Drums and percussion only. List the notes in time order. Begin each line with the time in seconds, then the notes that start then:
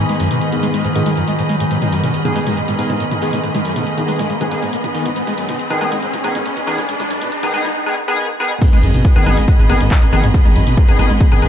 0.09 closed hi-hat
0.20 open hi-hat
0.31 closed hi-hat
0.41 closed hi-hat
0.52 closed hi-hat
0.63 open hi-hat
0.74 closed hi-hat
0.85 closed hi-hat
0.96 closed hi-hat
1.06 open hi-hat
1.17 closed hi-hat
1.28 closed hi-hat
1.39 closed hi-hat
1.49 open hi-hat
1.60 closed hi-hat
1.71 closed hi-hat
1.82 closed hi-hat, mid tom
1.93 open hi-hat
2.04 closed hi-hat, mid tom
2.14 closed hi-hat
2.25 closed hi-hat, mid tom
2.36 open hi-hat
2.47 closed hi-hat, mid tom
2.57 closed hi-hat
2.68 closed hi-hat, mid tom
2.79 open hi-hat
2.90 closed hi-hat, mid tom
3.00 closed hi-hat
3.11 closed hi-hat, mid tom
3.22 open hi-hat
3.33 closed hi-hat, mid tom
3.44 closed hi-hat
3.55 closed hi-hat, mid tom
3.65 open hi-hat
3.76 closed hi-hat, mid tom
3.87 closed hi-hat
3.98 closed hi-hat, mid tom
4.08 open hi-hat
4.19 closed hi-hat, mid tom
4.30 closed hi-hat
4.41 closed hi-hat, mid tom
4.51 open hi-hat
4.63 closed hi-hat, mid tom
4.73 closed hi-hat
4.84 closed hi-hat, mid tom
4.95 open hi-hat
5.06 closed hi-hat, mid tom
5.16 closed hi-hat
5.27 closed hi-hat, mid tom
5.38 open hi-hat
5.49 closed hi-hat, mid tom
5.59 closed hi-hat
5.70 closed hi-hat, mid tom
5.81 open hi-hat
5.92 closed hi-hat, mid tom
6.03 closed hi-hat
6.14 closed hi-hat, mid tom
6.24 open hi-hat
6.35 closed hi-hat, mid tom
6.46 closed hi-hat
6.57 closed hi-hat, mid tom
6.67 open hi-hat
6.78 closed hi-hat, mid tom
6.89 closed hi-hat
7.00 closed hi-hat, mid tom
7.10 open hi-hat
7.22 closed hi-hat, mid tom
7.32 closed hi-hat
7.43 closed hi-hat, mid tom
7.54 open hi-hat
7.65 closed hi-hat, mid tom
8.62 kick, closed hi-hat, mid tom, crash
8.73 closed hi-hat
8.83 open hi-hat
8.94 closed hi-hat, mid tom
9.05 kick, closed hi-hat
9.16 closed hi-hat
9.26 mid tom, open hi-hat
9.37 closed hi-hat
9.48 kick, closed hi-hat
9.59 closed hi-hat, mid tom
9.69 open hi-hat
9.81 closed hi-hat
9.91 kick, clap, closed hi-hat, mid tom
10.02 closed hi-hat
10.13 open hi-hat
10.24 closed hi-hat, mid tom
10.34 kick, closed hi-hat
10.45 closed hi-hat
10.56 mid tom, open hi-hat
10.67 closed hi-hat
10.77 kick, closed hi-hat
10.88 closed hi-hat, mid tom
10.99 open hi-hat
11.10 closed hi-hat
11.21 kick, closed hi-hat, mid tom
11.32 closed hi-hat
11.42 open hi-hat